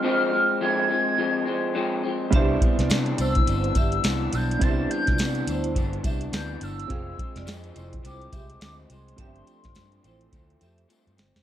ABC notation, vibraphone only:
X:1
M:4/4
L:1/16
Q:"Swing 16ths" 1/4=105
K:C
V:1 name="Vibraphone"
z16 | [Ge]2 z [Fd] z2 [Ec]3 z [Ge] z4 z | [Ge]2 z [Fd] z2 [Ec]3 z [Ge] z4 z | [_Af]2 z [Fd] z2 [Ec]3 z [Ge] z4 z |
[Ge]2 z [Fd] z2 [Ec]3 z [Ge] z4 z |]